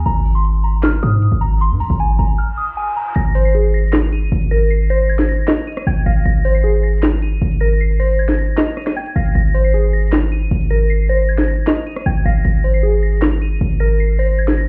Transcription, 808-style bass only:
0, 0, Header, 1, 2, 480
1, 0, Start_track
1, 0, Key_signature, -4, "major"
1, 0, Tempo, 387097
1, 76, Time_signature, 4, 2, 24, 8
1, 18209, End_track
2, 0, Start_track
2, 0, Title_t, "808-style bass"
2, 0, Program_c, 0, 38
2, 73, Note_on_c, 0, 32, 110
2, 1226, Note_off_c, 0, 32, 0
2, 1274, Note_on_c, 0, 44, 104
2, 1621, Note_off_c, 0, 44, 0
2, 1634, Note_on_c, 0, 32, 110
2, 2115, Note_on_c, 0, 44, 100
2, 2134, Note_off_c, 0, 32, 0
2, 2236, Note_on_c, 0, 32, 96
2, 2255, Note_off_c, 0, 44, 0
2, 2350, Note_off_c, 0, 32, 0
2, 2355, Note_on_c, 0, 32, 102
2, 2701, Note_off_c, 0, 32, 0
2, 2716, Note_on_c, 0, 32, 105
2, 2946, Note_off_c, 0, 32, 0
2, 3917, Note_on_c, 0, 32, 113
2, 5306, Note_off_c, 0, 32, 0
2, 5355, Note_on_c, 0, 32, 110
2, 6746, Note_off_c, 0, 32, 0
2, 7276, Note_on_c, 0, 32, 108
2, 7506, Note_off_c, 0, 32, 0
2, 7516, Note_on_c, 0, 32, 108
2, 7746, Note_off_c, 0, 32, 0
2, 7756, Note_on_c, 0, 32, 114
2, 9146, Note_off_c, 0, 32, 0
2, 9195, Note_on_c, 0, 32, 105
2, 10586, Note_off_c, 0, 32, 0
2, 11357, Note_on_c, 0, 32, 106
2, 11586, Note_off_c, 0, 32, 0
2, 11596, Note_on_c, 0, 32, 116
2, 12986, Note_off_c, 0, 32, 0
2, 13035, Note_on_c, 0, 32, 106
2, 14426, Note_off_c, 0, 32, 0
2, 14955, Note_on_c, 0, 32, 104
2, 15186, Note_off_c, 0, 32, 0
2, 15196, Note_on_c, 0, 32, 105
2, 15426, Note_off_c, 0, 32, 0
2, 15436, Note_on_c, 0, 32, 112
2, 16826, Note_off_c, 0, 32, 0
2, 16876, Note_on_c, 0, 32, 109
2, 18209, Note_off_c, 0, 32, 0
2, 18209, End_track
0, 0, End_of_file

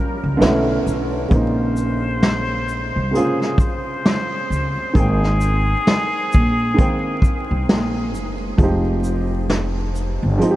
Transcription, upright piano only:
0, 0, Header, 1, 2, 480
1, 0, Start_track
1, 0, Tempo, 909091
1, 694, Time_signature, 4, 2, 24, 8
1, 5576, End_track
2, 0, Start_track
2, 0, Title_t, "Upright piano"
2, 0, Program_c, 0, 0
2, 0, Control_c, 0, 64, 127
2, 0, Note_on_c, 0, 53, 75
2, 0, Note_on_c, 0, 55, 80
2, 0, Note_on_c, 0, 58, 75
2, 0, Note_on_c, 0, 61, 77
2, 0, Note_on_c, 0, 67, 86
2, 195, Note_on_c, 0, 50, 103
2, 203, Note_on_c, 0, 57, 89
2, 206, Note_off_c, 0, 53, 0
2, 211, Note_off_c, 0, 55, 0
2, 211, Note_off_c, 0, 61, 0
2, 213, Note_on_c, 0, 59, 94
2, 215, Note_off_c, 0, 58, 0
2, 219, Note_on_c, 0, 61, 89
2, 221, Control_c, 0, 64, 0
2, 224, Note_off_c, 0, 67, 0
2, 229, Note_on_c, 0, 64, 110
2, 322, Control_c, 0, 64, 127
2, 610, Note_off_c, 0, 50, 0
2, 614, Note_off_c, 0, 57, 0
2, 618, Note_off_c, 0, 59, 0
2, 622, Note_off_c, 0, 61, 0
2, 626, Note_off_c, 0, 64, 0
2, 679, Note_on_c, 0, 49, 71
2, 689, Note_on_c, 0, 56, 63
2, 696, Note_on_c, 0, 58, 74
2, 702, Control_c, 0, 64, 0
2, 704, Note_on_c, 0, 60, 62
2, 712, Note_on_c, 0, 63, 76
2, 785, Control_c, 0, 64, 127
2, 1403, Note_off_c, 0, 49, 0
2, 1408, Note_off_c, 0, 56, 0
2, 1411, Note_off_c, 0, 58, 0
2, 1415, Note_off_c, 0, 60, 0
2, 1419, Note_off_c, 0, 63, 0
2, 1643, Note_on_c, 0, 48, 53
2, 1652, Note_on_c, 0, 56, 62
2, 1658, Note_on_c, 0, 58, 63
2, 1667, Note_on_c, 0, 60, 64
2, 1675, Note_on_c, 0, 49, 69
2, 1675, Note_on_c, 0, 65, 82
2, 1690, Note_off_c, 0, 48, 0
2, 2369, Note_off_c, 0, 56, 0
2, 2372, Note_off_c, 0, 58, 0
2, 2377, Note_off_c, 0, 60, 0
2, 2381, Note_off_c, 0, 49, 0
2, 2381, Note_off_c, 0, 65, 0
2, 2606, Note_on_c, 0, 51, 69
2, 2616, Note_on_c, 0, 56, 61
2, 2621, Control_c, 0, 64, 0
2, 2623, Note_on_c, 0, 58, 67
2, 2632, Note_on_c, 0, 60, 66
2, 2640, Note_on_c, 0, 79, 86
2, 2711, Control_c, 0, 64, 127
2, 3326, Note_off_c, 0, 51, 0
2, 3331, Note_off_c, 0, 56, 0
2, 3335, Note_off_c, 0, 58, 0
2, 3339, Note_off_c, 0, 60, 0
2, 3343, Note_off_c, 0, 79, 0
2, 3560, Note_on_c, 0, 51, 77
2, 3569, Note_on_c, 0, 56, 68
2, 3577, Note_on_c, 0, 58, 79
2, 3586, Note_on_c, 0, 60, 80
2, 3595, Note_on_c, 0, 79, 84
2, 4283, Note_off_c, 0, 51, 0
2, 4288, Note_off_c, 0, 56, 0
2, 4292, Note_off_c, 0, 58, 0
2, 4297, Note_off_c, 0, 60, 0
2, 4301, Note_off_c, 0, 79, 0
2, 4528, Note_on_c, 0, 53, 86
2, 4537, Note_on_c, 0, 56, 72
2, 4542, Control_c, 0, 64, 0
2, 4545, Note_on_c, 0, 60, 80
2, 4554, Note_on_c, 0, 63, 78
2, 4561, Note_on_c, 0, 67, 93
2, 4644, Control_c, 0, 64, 127
2, 5247, Note_off_c, 0, 53, 0
2, 5252, Note_off_c, 0, 56, 0
2, 5256, Note_off_c, 0, 60, 0
2, 5261, Note_off_c, 0, 63, 0
2, 5264, Note_off_c, 0, 67, 0
2, 5481, Note_on_c, 0, 53, 86
2, 5489, Note_on_c, 0, 56, 75
2, 5499, Note_on_c, 0, 60, 72
2, 5506, Note_on_c, 0, 63, 70
2, 5513, Note_on_c, 0, 65, 72
2, 5546, Note_off_c, 0, 65, 0
2, 5549, Note_on_c, 0, 67, 86
2, 5576, Note_off_c, 0, 53, 0
2, 5576, Note_off_c, 0, 56, 0
2, 5576, Note_off_c, 0, 60, 0
2, 5576, Note_off_c, 0, 63, 0
2, 5576, Note_off_c, 0, 67, 0
2, 5576, End_track
0, 0, End_of_file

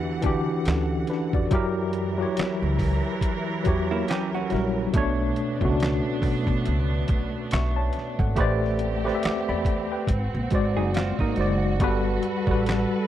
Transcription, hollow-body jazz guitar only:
0, 0, Header, 1, 2, 480
1, 0, Start_track
1, 0, Tempo, 857143
1, 847, Time_signature, 4, 2, 24, 8
1, 7319, End_track
2, 0, Start_track
2, 0, Title_t, "Hollow-body jazz guitar"
2, 0, Program_c, 0, 26
2, 2191, Note_on_c, 0, 64, 76
2, 2194, Note_on_c, 0, 58, 68
2, 2286, Note_off_c, 0, 64, 0
2, 2287, Note_off_c, 0, 58, 0
2, 2295, Note_on_c, 0, 61, 64
2, 2295, Note_on_c, 0, 67, 73
2, 2420, Note_off_c, 0, 67, 0
2, 2421, Note_off_c, 0, 61, 0
2, 2433, Note_on_c, 0, 66, 79
2, 2439, Note_on_c, 0, 61, 67
2, 2755, Note_off_c, 0, 66, 0
2, 2758, Note_off_c, 0, 61, 0
2, 6029, Note_on_c, 0, 68, 70
2, 6035, Note_on_c, 0, 63, 62
2, 6125, Note_off_c, 0, 68, 0
2, 6128, Note_off_c, 0, 63, 0
2, 6137, Note_on_c, 0, 60, 67
2, 6137, Note_on_c, 0, 65, 70
2, 6261, Note_off_c, 0, 65, 0
2, 6262, Note_off_c, 0, 60, 0
2, 6272, Note_on_c, 0, 63, 75
2, 6277, Note_on_c, 0, 58, 60
2, 6594, Note_off_c, 0, 63, 0
2, 6597, Note_off_c, 0, 58, 0
2, 7319, End_track
0, 0, End_of_file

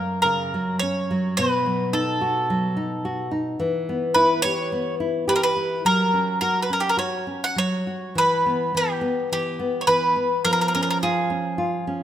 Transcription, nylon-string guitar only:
0, 0, Header, 1, 2, 480
1, 0, Start_track
1, 0, Tempo, 576369
1, 1148, Time_signature, 4, 2, 24, 8
1, 1148, Tempo, 554529
1, 4508, Tempo, 571429
1, 5948, Tempo, 590551
1, 7388, Tempo, 561798
1, 10194, End_track
2, 0, Start_track
2, 0, Title_t, "Nylon-string guitar"
2, 0, Program_c, 0, 24
2, 0, Note_on_c, 0, 42, 55
2, 0, Note_on_c, 0, 58, 47
2, 187, Note_off_c, 0, 58, 0
2, 205, Note_on_c, 0, 49, 51
2, 436, Note_off_c, 0, 49, 0
2, 450, Note_on_c, 0, 54, 47
2, 677, Note_off_c, 0, 54, 0
2, 688, Note_on_c, 0, 61, 51
2, 914, Note_off_c, 0, 61, 0
2, 921, Note_on_c, 0, 54, 49
2, 1125, Note_off_c, 0, 42, 0
2, 1144, Note_off_c, 0, 54, 0
2, 1155, Note_on_c, 0, 47, 61
2, 1393, Note_on_c, 0, 54, 46
2, 1622, Note_off_c, 0, 54, 0
2, 1626, Note_on_c, 0, 63, 56
2, 1858, Note_off_c, 0, 63, 0
2, 1870, Note_on_c, 0, 66, 54
2, 2099, Note_off_c, 0, 66, 0
2, 2118, Note_on_c, 0, 54, 54
2, 2343, Note_off_c, 0, 54, 0
2, 2349, Note_on_c, 0, 63, 53
2, 2575, Note_off_c, 0, 63, 0
2, 2594, Note_on_c, 0, 66, 59
2, 2816, Note_off_c, 0, 66, 0
2, 2823, Note_on_c, 0, 63, 53
2, 3023, Note_off_c, 0, 47, 0
2, 3051, Note_off_c, 0, 63, 0
2, 3067, Note_on_c, 0, 52, 67
2, 3322, Note_on_c, 0, 59, 49
2, 3545, Note_off_c, 0, 59, 0
2, 3552, Note_on_c, 0, 64, 58
2, 3782, Note_off_c, 0, 64, 0
2, 3804, Note_on_c, 0, 67, 55
2, 4028, Note_off_c, 0, 67, 0
2, 4042, Note_on_c, 0, 59, 57
2, 4268, Note_off_c, 0, 59, 0
2, 4283, Note_on_c, 0, 64, 54
2, 4511, Note_off_c, 0, 64, 0
2, 4521, Note_on_c, 0, 67, 59
2, 4747, Note_off_c, 0, 67, 0
2, 4764, Note_on_c, 0, 64, 47
2, 4959, Note_off_c, 0, 52, 0
2, 4988, Note_off_c, 0, 64, 0
2, 5003, Note_on_c, 0, 54, 64
2, 5244, Note_on_c, 0, 61, 46
2, 5469, Note_off_c, 0, 61, 0
2, 5480, Note_on_c, 0, 66, 52
2, 5708, Note_off_c, 0, 66, 0
2, 5717, Note_on_c, 0, 61, 46
2, 5946, Note_off_c, 0, 61, 0
2, 5946, Note_on_c, 0, 66, 46
2, 6176, Note_off_c, 0, 66, 0
2, 6187, Note_on_c, 0, 61, 44
2, 6415, Note_off_c, 0, 54, 0
2, 6421, Note_off_c, 0, 61, 0
2, 6424, Note_on_c, 0, 54, 48
2, 6663, Note_off_c, 0, 54, 0
2, 6675, Note_on_c, 0, 66, 41
2, 6906, Note_on_c, 0, 52, 55
2, 6909, Note_off_c, 0, 66, 0
2, 7156, Note_on_c, 0, 59, 44
2, 7377, Note_off_c, 0, 52, 0
2, 7383, Note_off_c, 0, 59, 0
2, 7387, Note_on_c, 0, 52, 49
2, 7616, Note_on_c, 0, 59, 51
2, 7623, Note_off_c, 0, 52, 0
2, 7857, Note_off_c, 0, 59, 0
2, 7877, Note_on_c, 0, 52, 49
2, 8107, Note_off_c, 0, 52, 0
2, 8113, Note_on_c, 0, 59, 49
2, 8345, Note_off_c, 0, 59, 0
2, 8352, Note_on_c, 0, 52, 54
2, 8587, Note_off_c, 0, 52, 0
2, 8596, Note_on_c, 0, 59, 46
2, 8834, Note_off_c, 0, 59, 0
2, 8842, Note_on_c, 0, 53, 63
2, 9103, Note_on_c, 0, 61, 49
2, 9324, Note_off_c, 0, 61, 0
2, 9338, Note_on_c, 0, 65, 53
2, 9559, Note_off_c, 0, 65, 0
2, 9570, Note_on_c, 0, 61, 54
2, 9795, Note_off_c, 0, 61, 0
2, 9809, Note_on_c, 0, 65, 57
2, 10033, Note_off_c, 0, 65, 0
2, 10060, Note_on_c, 0, 61, 53
2, 10194, Note_off_c, 0, 53, 0
2, 10194, Note_off_c, 0, 61, 0
2, 10194, End_track
0, 0, End_of_file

